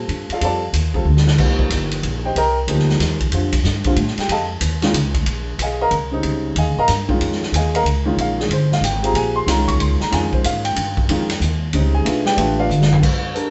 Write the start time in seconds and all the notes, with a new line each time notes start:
Already playing: G3 C4 F4 A4
0.08 G2, ride
0.29 F5, muted upright bass stroke, ride
0.33 F4 A4 D5
0.41 F2 G3 C4 F4 A4 F5 A5, ride
0.45 D5
0.73 D#2, hi-hat pedal, ride
0.94 G3 C4 F4 A4, kick
1.05 D2
1.17 snare
1.27 snare
1.38 C2 F3 A#3 D#4 G4, kick, crash
1.59 kick
1.70 G1, hi-hat pedal, ride
1.91 ride
2.03 A#1, ride
2.25 G4 C5 D#5 G5
2.35 C2 A#4 D#5 G5 A#5, ride
2.68 D2 F3 A#3 D#4 G4, ride
2.79 snare
2.89 snare
3.00 D#2, snare, hi-hat pedal, ride
3.20 kick, ride
3.31 F2 D3 G3 C4 F4, ride
3.52 kick, ride
3.64 G2, snare, hi-hat pedal
3.84 D3 G3 C4 F4, kick, ride
3.96 A2, ride
4.07 snare
4.17 G4 G5, muted upright bass stroke, snare, ride
4.28 F2 A4 D#5 F5 A5, ride
4.61 D#2, hi-hat pedal, ride
4.82 D#3 G#3 C#4 F4, snare, ride
4.93 C#2, hi-hat pedal, ride
5.14 kick, ride
5.26 A#1, ride
5.58 B1 G#5, hi-hat pedal, ride
5.63 G#4 D#5 F5
5.81 A#4 D#5 F5 A#5
5.91 C2, ride
6.11 C#3 G3 C4 D#4
6.23 C#2, ride
6.56 D#2 G#4 D#5 F5 G#5, ride
6.67 C#2
6.77 A#1 A#4 D#5 F5 A#5
6.88 G2, snare, hi-hat pedal, ride
7.08 D#3 G#3 C#4 F4, kick
7.20 F2, ride
7.32 snare
7.43 snare
7.52 D#2 G#5, hi-hat pedal, ride
7.56 G#4 D#5 F5
7.75 A#4 D#5 F5 A#5, ride
7.84 C#2, ride
8.05 D#3 G#3 C#4 F4
8.16 A#1, ride
8.21 F5
8.40 G#4, snare
8.49 G1, ride
8.53 C5
8.72 F5, snare
8.81 G#1 G5, hi-hat pedal, ride
9.03 C4 F4 G4 G#4 A#5, ride
9.14 A#1 G#5, ride
9.36 C6
9.46 C2 D#3 G#3 C#4 F4 A#5, snare, hi-hat pedal, ride
9.68 C#6, kick, ride
9.79 C#2 C6, ride
10.00 A#5, muted upright bass stroke, snare
10.11 F2 D#3 G#3 C#4 F4 G#5, snare, ride
10.33 C5, kick
10.44 G#2 F5, hi-hat pedal, ride
10.65 G5, ride
10.76 G2, ride
10.97 kick
11.08 F2 D#3 G#3 C#4 F4, ride
11.30 snare, ride
11.40 D#2, hi-hat pedal
11.73 C#2 C#3 G3 C4 D#4, ride
11.95 G#4 G#5
12.05 B1 A3 B3 D4 F4, ride
12.26 G4 B4 D5 G5, snare
12.37 A1 A3 B3 D4 F4, ride
12.59 F4 B4 D5 F5
12.69 G1, hi-hat pedal
12.82 snare
12.92 floor tom
13.03 kick, crash
13.34 D4 G4 A4 A#4, closed hi-hat